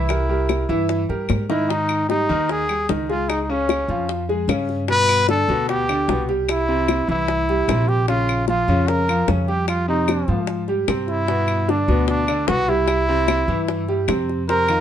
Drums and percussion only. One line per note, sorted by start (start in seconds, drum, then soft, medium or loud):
0.09 high bongo medium
0.09 claves medium
0.49 high bongo medium
0.49 claves medium
0.70 high bongo soft
0.89 high bongo medium
1.10 high bongo soft
1.29 high bongo medium
1.29 claves medium
1.50 low bongo medium
1.70 high bongo medium
1.89 high bongo soft
1.89 claves medium
2.10 high bongo medium
2.30 high bongo soft
2.49 high bongo medium
2.69 claves medium
2.89 high bongo medium
2.89 low bongo medium
3.10 high bongo soft
3.30 high bongo medium
3.30 claves medium
3.69 high bongo medium
3.69 claves medium
3.89 high bongo soft
4.09 high bongo medium
4.29 high bongo soft
4.49 high bongo medium
4.49 low bongo medium
4.49 claves medium
4.69 high bongo soft
4.88 high bongo medium
5.09 high bongo soft
5.09 claves medium
5.29 high bongo medium
5.49 high bongo soft
5.69 high bongo medium
5.89 claves medium
6.09 high bongo medium
6.09 low bongo medium
6.29 high bongo soft
6.49 high bongo medium
6.49 claves medium
6.88 high bongo medium
6.88 claves medium
7.09 high bongo soft
7.28 high bongo medium
7.49 high bongo soft
7.69 high bongo medium
7.69 low bongo medium
7.69 claves medium
7.89 high bongo soft
8.08 high bongo medium
8.29 high bongo soft
8.29 claves medium
8.48 high bongo medium
8.68 high bongo soft
8.88 high bongo medium
9.09 claves medium
9.28 high bongo medium
9.28 low bongo medium
9.48 high bongo soft
9.68 high bongo medium
9.68 claves medium
10.08 high bongo medium
10.08 claves medium
10.28 high bongo soft
10.47 high bongo medium
10.68 high bongo soft
10.88 high bongo medium
10.88 low bongo medium
10.88 claves medium
11.08 high bongo soft
11.28 high bongo medium
11.48 high bongo soft
11.48 claves medium
11.69 high bongo medium
11.89 high bongo soft
12.08 high bongo medium
12.28 claves medium
12.48 high bongo medium
12.48 low bongo medium
12.68 high bongo soft
12.88 high bongo medium
12.88 claves medium
13.28 high bongo medium
13.28 claves medium
13.49 high bongo soft
13.68 high bongo medium
13.88 high bongo soft
14.08 high bongo medium
14.08 low bongo medium
14.08 claves medium
14.29 high bongo soft
14.49 high bongo medium
14.69 high bongo soft
14.69 claves medium